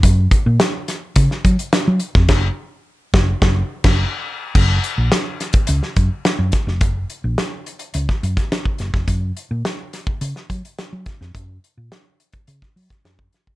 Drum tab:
CC |----------------|x----------x----|x---------------|----------------|
HH |x-x-x-x-x-xxx-x-|----------------|--x-x-xxx-x-x-x-|x-x-x-xxx-xxx-x-|
SD |----o-o--o--o--o|o-----o-o--o----|----o-o--o--o-oo|----o----o-oo-oo|
BD |o-o-----o-o----o|o-----o-o--o----|o------o--o---o-|o--------o-o-o-o|

CC |----------------|----------------|
HH |x-x-x-x-x-xxx-x-|x-x-x-xxx-oxx-x-|
SD |----o-o--o--o-oo|----o----o-oo-o-|
BD |o------o--o---o-|o------o-o-o-o-o|